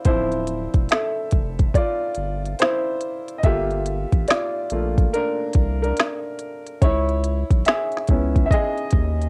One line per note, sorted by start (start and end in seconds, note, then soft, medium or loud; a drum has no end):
0.00 0.07 E4 medium
0.00 1.77 F4 medium
0.00 0.06 C5 loud
0.00 1.75 D5 loud
0.05 0.68 D1 loud
0.05 3.40 F3 medium
0.05 3.40 C4 medium
0.05 2.60 E4 medium
0.05 0.93 C5 loud
0.05 kick loud
0.05 closed hi-hat medium
0.32 closed hi-hat soft
0.47 closed hi-hat medium
0.74 0.88 E1 loud
0.74 kick medium
0.74 closed hi-hat soft
0.89 1.72 A4 medium
0.89 1.77 E5 medium
0.89 finger snap loud
0.89 snare loud
0.89 closed hi-hat medium
1.31 1.70 F1 medium
1.31 kick medium
1.31 closed hi-hat medium
1.59 kick medium
1.59 closed hi-hat soft
1.74 2.56 F4 medium
1.74 2.62 D5 medium
1.74 kick medium
1.74 closed hi-hat medium
2.15 2.55 G1 medium
2.15 closed hi-hat medium
2.46 closed hi-hat soft
2.59 3.25 E4 medium
2.59 3.25 C5 loud
2.59 finger snap medium
2.59 snare loud
2.59 closed hi-hat medium
3.01 closed hi-hat medium
3.28 closed hi-hat medium
3.38 3.43 D#5 medium
3.43 4.06 G1 loud
3.43 4.71 A#3 medium
3.43 4.29 F4 medium
3.43 4.25 G4 medium
3.43 6.78 A4 medium
3.43 4.31 E5 loud
3.43 kick loud
3.43 closed hi-hat medium
3.71 closed hi-hat soft
3.86 closed hi-hat medium
4.12 4.26 A1 medium
4.12 kick medium
4.12 closed hi-hat soft
4.28 4.71 F4 medium
4.28 5.15 D5 medium
4.28 finger snap medium
4.28 snare loud
4.28 closed hi-hat medium
4.70 5.09 A#1 medium
4.70 5.09 A3 medium
4.70 5.09 A#3 soft
4.70 5.10 F4 medium
4.70 closed hi-hat medium
4.98 kick medium
4.98 closed hi-hat soft
5.13 5.79 D4 medium
5.13 5.78 A#4 loud
5.13 closed hi-hat medium
5.53 5.93 C2 loud
5.53 kick medium
5.53 closed hi-hat medium
5.82 6.37 D4 soft
5.82 6.35 A#4 medium
5.82 closed hi-hat soft
5.97 finger snap medium
5.97 snare loud
5.97 closed hi-hat medium
6.39 closed hi-hat medium
6.67 closed hi-hat soft
6.82 7.44 C#2 loud
6.82 7.63 E4 medium
6.82 7.62 C#5 loud
6.82 kick loud
6.82 closed hi-hat medium
7.09 closed hi-hat soft
7.24 closed hi-hat medium
7.51 7.64 B1 medium
7.51 kick loud
7.51 closed hi-hat medium
7.65 8.43 G#4 medium
7.65 8.42 E5 medium
7.65 finger snap loud
7.65 snare loud
7.65 closed hi-hat medium
7.92 closed hi-hat soft
7.97 snare soft
8.07 8.46 C#2 medium
8.07 9.29 B3 medium
8.07 9.29 C#4 medium
8.07 9.29 E4 medium
8.07 kick medium
8.07 closed hi-hat medium
8.36 kick medium
8.36 closed hi-hat soft
8.46 8.51 E5 medium
8.51 9.29 G#4 medium
8.51 9.29 D#5 loud
8.51 kick loud
8.51 closed hi-hat medium
8.78 closed hi-hat soft
8.91 9.29 D#2 medium
8.91 kick medium
8.91 closed hi-hat medium
9.22 closed hi-hat soft